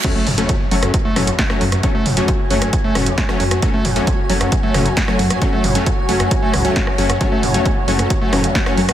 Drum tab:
CC |x---------------|----------------|----------------|----------------|
HH |x-oxx-oxx-oxx-ox|x-oxx-oxx-oxx-ox|x-oxx-oxx-oxx-ox|x-oxx-oxx-oxx-ox|
SD |-------r--r-or-r|-------r--r-or-r|-------r--r-or-r|-------r--r-or-r|
BD |o---o---o---o---|o---o---o---o---|o---o---o---o---|o---o---o---o---|

CC |----------------|
HH |x-oxx-oxx-oxx-ox|
SD |-------r--r-or-r|
BD |o---o---o---o---|